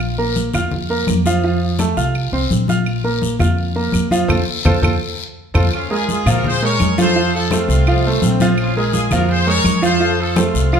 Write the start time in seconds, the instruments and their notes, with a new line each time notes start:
Already playing: upright bass A#1, grand piano F4 F5 F6
0.00 high conga, claves
0.18 grand piano A#3 A#4 A#5, high conga
0.36 high conga, short guiro
0.53 upright bass F2, grand piano F4 F5 F6, high conga, low conga, short guiro, claves
0.71 high conga, low conga, long guiro
0.89 grand piano A#3 A#4 A#5, high conga
1.07 upright bass F2, high conga, short guiro, claves
1.25 grand piano F3 F4 F5, high conga, short guiro
1.44 grand piano F3 F4 F5, long guiro
1.61 high conga
1.79 grand piano A3 A4 A5, high conga, short guiro, claves
1.97 upright bass C2, grand piano F4 F5 F6, high conga, short guiro
2.15 high conga, long guiro, claves
2.32 upright bass C2, grand piano C4 C5 C6, high conga
2.51 upright bass A#1, high conga, short guiro
2.68 grand piano F4 F5 F6, high conga, short guiro
2.86 high conga, long guiro, claves
3.04 grand piano A#3 A#4 A#5, high conga
3.22 high conga, short guiro
3.39 upright bass F2, grand piano F4 F5 F6, high conga, low conga, short guiro, claves
3.58 high conga, long guiro
3.76 grand piano A#3 A#4 A#5, high conga
3.92 upright bass F2, high conga, short guiro, claves
4.11 grand piano F3 F4 F5, high conga, short guiro
4.28 upright bass F2, grand piano F4 A4 C5, low conga, long guiro, claves
4.65 upright bass F2, grand piano F4 A4 C5, low conga, long guiro, claves
4.82 upright bass F2, grand piano F4 A4 C5, low conga, long guiro, claves
5.54 upright bass F2, grand piano F4 A4 C5, low conga, long guiro, claves
5.72 horn section C#4 F4, high conga, long guiro, claves
5.90 grand piano G#3 G#4 A#4, horn section F4 G#4, high conga
6.09 horn section F4 G#4, high conga, short guiro
6.26 upright bass A#2, grand piano F3 F4 F5, horn section F#4 A#4, high conga, low conga, short guiro, claves
6.44 horn section G#4 C5, high conga, low conga, long guiro
6.62 grand piano G#3 G#4 A#4, horn section A#4 C#5, high conga
6.80 upright bass F2, high conga, short guiro, claves
6.98 grand piano F3 F4 F5, horn section A4 C5, high conga, short guiro
7.16 grand piano F3 F4 F5, long guiro
7.34 horn section F4 A4, high conga
7.51 grand piano A3 A4 C5, horn section C4 F4, high conga, short guiro, claves
7.68 upright bass C2, high conga, short guiro
7.87 grand piano F3 F4 F5, trombone section A3, high conga, long guiro, claves
8.04 grand piano A3 A4 C5, high conga
8.22 upright bass A#1, trombone section C4, high conga, short guiro
8.40 grand piano F3 F4 F5, high conga, short guiro
8.58 horn section C#4 F4, high conga, long guiro, claves
8.76 grand piano G#3 G#4 A#4, horn section F4 G#4, high conga
8.93 horn section F4 G#4, high conga, short guiro
9.11 upright bass F2, grand piano F3 F4 F5, horn section F#4 A#4, high conga, low conga, short guiro, claves
9.29 horn section G#4 C5, high conga, long guiro
9.47 grand piano G#3 G#4 A#4, horn section A#4 C#5, high conga
9.64 upright bass F2, high conga, short guiro, claves
9.82 grand piano F3 F4 F5, horn section A4 C5, short guiro
10.00 grand piano F3 F4 F5, high conga, long guiro
10.18 horn section F4 A4, high conga
10.36 grand piano A3 A4 C5, horn section C4 F4, high conga, short guiro, claves
10.54 upright bass C2, high conga, short guiro
10.72 grand piano F3 F4 F5, trombone section F4, high conga, long guiro, claves